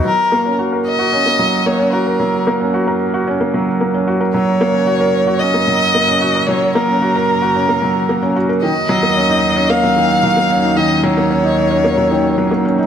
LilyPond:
<<
  \new Staff \with { instrumentName = "Violin" } { \time 4/4 \key fis \major \tempo 4 = 112 ais'4 r8 dis''4. cis''8 ais'8~ | ais'8 r2. r8 | cis''2 dis''2 | cis''8 ais'2. r8 |
dis''2 eis''2 | dis''8 cis''2. r8 | }
  \new Staff \with { instrumentName = "Felt piano" } { \time 4/4 \key fis \major fis16 r16 ais16 cis'16 fis'16 ais'16 r16 fis'16 cis'16 ais16 fis16 r16 ais16 cis'16 fis'16 ais'16 | fis16 r16 ais16 cis'16 fis'16 ais'16 r16 fis'16 cis'16 ais16 fis16 r16 ais16 cis'16 fis'16 ais'16 | fis16 r16 ais16 cis'16 fis'16 ais'16 r16 fis'16 cis'16 ais16 fis16 r16 ais16 cis'16 fis'16 ais'16 | fis16 r16 ais16 cis'16 fis'16 ais'16 r16 fis'16 cis'16 ais16 fis16 r16 ais16 cis'16 fis'16 ais'16 |
dis16 r16 fis16 ais16 cis'16 dis'16 r16 cis'16 ais16 fis16 dis16 r16 fis16 ais16 cis'16 dis'16 | dis16 r16 fis16 ais16 cis'16 dis'16 r16 cis'16 ais16 fis16 dis16 r16 fis16 ais16 cis'16 dis'16 | }
  \new Staff \with { instrumentName = "Analog synth pad" } { \clef bass \time 4/4 \key fis \major << { fis'1~ | fis'1~ | fis'1~ | fis'1~ |
fis'1~ | fis'1 | } \\ { <fis, cis ais>1~ | <fis, cis ais>1~ | <fis, cis ais>1~ | <fis, cis ais>1 |
<dis, dis cis'>1~ | <dis, dis cis'>1 | } >> }
>>